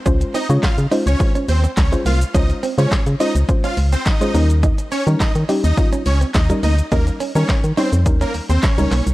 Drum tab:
HH |xxoxxxoxxxoxxxox|xxoxxxoxxxoxxxox|xxoxxxoxxxoxxxox|xxoxxxoxxxoxxxox|
SH |xxxxxxxxxxxxxxxx|xxxxxxxxxxxxxxxx|xxxxxxxxxxxxxxxx|xxxxxxxxxxxxxxxx|
CP |----x-------x---|----x-------x---|----x-------x---|----x-------x-x-|
SD |----o-------o---|----o-------o---|----o-------o---|----o-------o---|
BD |o---o---o---o---|o---o---o---o---|o---o---o---o---|o---o---o---o---|